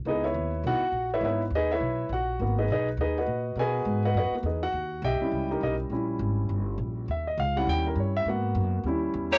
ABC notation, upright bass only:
X:1
M:4/4
L:1/8
Q:"Swing" 1/4=205
K:D#phr
V:1 name="Upright bass" clef=bass
C,,2 D,,2 B,,, z A,,,2 | G,,,2 D,,2 B,,,2 A,,,2 | G,,,2 B,,,2 D,,2 A,,2 | B,,2 G,,2 F,, z E,,2 |
D,,2 B,,, z C,,2 B,,,2 | A,,,2 G,,,2 =G,,,2 A,,,2 | D,,2 C,,2 D,,2 =G,,2 | G,,2 F,,2 D,,2 E,,2 |]